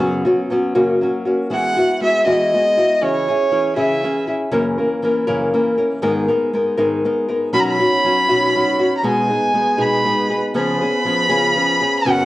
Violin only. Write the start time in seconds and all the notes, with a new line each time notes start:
1.52 F#5
2.03 E5
2.27 D#5
3.03 C#5
3.77 E5
7.54 B5
7.60 A#5
7.70 B5
8.97 A#5
9.06 G#5
9.81 B5
10.56 B5
12.09 F#5